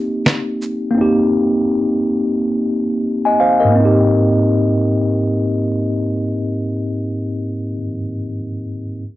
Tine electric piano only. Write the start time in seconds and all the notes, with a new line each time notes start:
Already playing: A#3 C4 D#4 G4
0.91 A#3 C4
0.98 D#4 G4
3.25 D#5 G#5
3.40 C5 F5
3.60 A#4 D#5
3.65 G#2
3.70 A#3
3.75 C4
3.80 D#4
3.85 G4